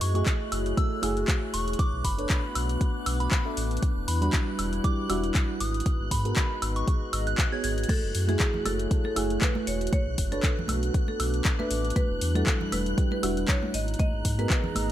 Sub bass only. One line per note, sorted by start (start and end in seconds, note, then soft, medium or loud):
0.01 0.23 F#2 medium
0.52 0.74 F#1 medium
1.03 1.25 F#1 loud
1.54 1.75 E1 medium
1.93 2.03 B1 medium
2.05 2.26 F#1 medium
2.55 2.77 B1 medium
3.06 3.28 B1 loud
3.57 3.79 A1 medium
3.96 4.06 E1 medium
4.08 4.30 E2 medium
4.59 4.80 E1 medium
5.10 5.31 E1 loud
5.60 5.82 G#1 medium
6.00 6.09 G#1 loud
6.11 6.33 G#2 medium
6.62 6.84 G#1 medium
7.13 7.35 G#1 loud
7.64 7.86 G#1 medium
8.03 8.13 F#1 medium
8.15 8.36 F#2 medium
8.66 8.87 F#1 medium
9.16 9.38 F#1 loud
9.67 9.89 E1 medium
10.07 10.16 B1 loud
10.18 10.40 F#1 medium
10.69 10.91 B1 medium
11.20 11.42 B1 loud
11.71 11.92 A1 medium
12.10 12.20 E1 medium
12.21 12.43 E2 medium
12.72 12.94 E1 medium
13.23 13.45 E1 loud
13.74 13.96 G#1 medium
14.13 14.23 G#1 loud
14.25 14.47 G#2 medium
14.76 14.92 G#1 medium